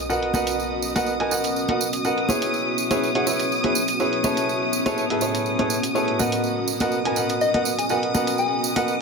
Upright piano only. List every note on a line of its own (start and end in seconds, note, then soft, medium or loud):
0.10 0.31 F#4 medium
0.10 0.31 A#4 medium
0.10 0.31 B4 medium
0.10 0.31 D#5 medium
0.10 0.31 F#5 medium
0.34 0.93 F#4 medium
0.34 0.93 A#4 medium
0.34 0.93 B4 medium
0.34 0.93 D#5 medium
0.34 0.93 F#5 loud
0.96 1.12 F#4 loud
0.96 1.12 A#4 medium
0.96 1.12 B4 medium
0.96 1.12 D#5 medium
0.96 1.12 F#5 loud
1.20 1.30 F#4 medium
1.20 1.30 A#4 medium
1.20 1.30 B4 medium
1.20 1.30 D#5 medium
1.20 1.30 G#5 medium
1.32 1.66 F#4 medium
1.32 1.66 A#4 medium
1.32 1.66 B4 medium
1.32 1.66 D#5 medium
1.32 1.66 F#5 medium
1.69 1.85 F#4 medium
1.69 1.85 A#4 medium
1.69 1.85 B4 medium
1.69 1.85 D#5 medium
1.69 1.85 F#5 medium
2.05 2.26 F#4 medium
2.05 2.26 A#4 medium
2.05 2.26 B4 medium
2.05 2.26 D#5 medium
2.05 2.26 F#5 medium
2.29 2.88 E4 medium
2.29 2.88 G#4 medium
2.29 2.88 B4 medium
2.29 2.88 C#5 medium
2.29 2.88 E5 medium
2.91 3.07 E4 medium
2.91 3.07 G#4 medium
2.91 3.07 B4 medium
2.91 3.07 C#5 medium
2.91 3.07 E5 loud
3.15 3.25 E4 medium
3.15 3.25 G#4 medium
3.15 3.25 B4 medium
3.15 3.25 C#5 medium
3.15 3.25 F#5 medium
3.27 3.61 E4 medium
3.27 3.61 G#4 medium
3.27 3.61 B4 medium
3.27 3.61 C#5 medium
3.27 3.61 E5 medium
3.64 3.80 E4 medium
3.64 3.80 G#4 medium
3.64 3.80 B4 medium
3.64 3.80 C#5 medium
3.64 3.80 E5 medium
4.00 4.21 E4 medium
4.00 4.21 G#4 medium
4.00 4.21 B4 medium
4.00 4.21 C#5 medium
4.00 4.21 E5 medium
4.24 4.83 E4 medium
4.24 4.83 G#4 medium
4.24 4.83 A4 medium
4.24 4.83 B4 medium
4.24 4.83 C#5 medium
4.86 5.02 E4 loud
4.86 5.02 G#4 medium
4.86 5.02 A4 medium
4.86 5.02 B4 medium
4.86 5.02 C#5 loud
5.10 5.20 E4 medium
5.10 5.20 G#4 medium
5.10 5.20 A4 medium
5.10 5.20 B4 medium
5.10 5.20 E5 loud
5.22 5.56 E4 medium
5.22 5.56 G#4 medium
5.22 5.56 A4 medium
5.22 5.56 B4 medium
5.22 5.56 C#5 medium
5.59 5.75 E4 medium
5.59 5.75 G#4 medium
5.59 5.75 A4 medium
5.59 5.75 B4 medium
5.59 5.75 C#5 medium
5.95 6.17 E4 medium
5.95 6.17 G#4 medium
5.95 6.17 A4 medium
5.95 6.17 B4 medium
5.95 6.17 C#5 medium
6.19 6.78 F#4 medium
6.19 6.78 A#4 medium
6.19 6.78 B4 medium
6.19 6.78 D#5 medium
6.19 6.78 F#5 medium
6.81 6.97 F#4 medium
6.81 6.97 A#4 medium
6.81 6.97 B4 medium
6.81 6.97 D#5 medium
6.81 6.97 F#5 loud
7.05 7.15 F#4 medium
7.05 7.15 A#4 medium
7.05 7.15 B4 medium
7.05 7.15 D#5 medium
7.05 7.15 G#5 medium
7.17 7.51 F#4 medium
7.17 7.51 A#4 medium
7.17 7.51 B4 medium
7.17 7.51 D#5 medium
7.17 7.51 F#5 medium
7.54 7.71 F#4 medium
7.54 7.71 A#4 medium
7.54 7.71 B4 medium
7.54 7.71 D#5 medium
7.54 7.71 F#5 medium
7.90 8.12 F#4 medium
7.90 8.12 A#4 medium
7.90 8.12 B4 medium
7.90 8.12 D#5 medium
7.90 8.12 F#5 medium
8.14 8.73 F#4 medium
8.14 8.73 A#4 medium
8.14 8.73 B4 medium
8.14 8.73 D#5 medium
8.14 8.73 F#5 medium
8.76 8.93 F#4 medium
8.76 8.93 A#4 medium
8.76 8.93 B4 medium
8.76 8.93 D#5 medium
8.76 8.93 F#5 loud